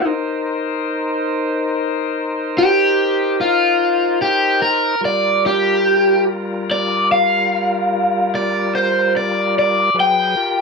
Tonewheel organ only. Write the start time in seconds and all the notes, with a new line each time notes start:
0.05 D#4 A#4 C5
5.01 G3 F4 A#4
9.94 F#3 G#4 B4
10.36 F4 G4 A#4